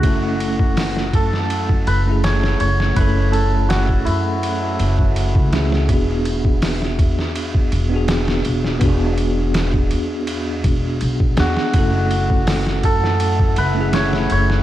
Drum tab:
RD |x-x---x-x-x-x-x-|x-x-x-x-x-x-x-x-|x-x---x-x-x-x-x-|x-x-x-x-x-x-x-x-|
HH |----o-----------|----------------|----o-----------|----------------|
SD |----oo-o----oo-o|----o---------oo|----oo-o----oo-o|----o---------oo|
BD |o--o--o--o------|o----o-----o-o--|o--o--o--o------|o----o----o--o--|

RD |x-x---x-x-x-x-x-|
HH |----o-----------|
SD |----oo-o----oo-o|
BD |o--o--o--o------|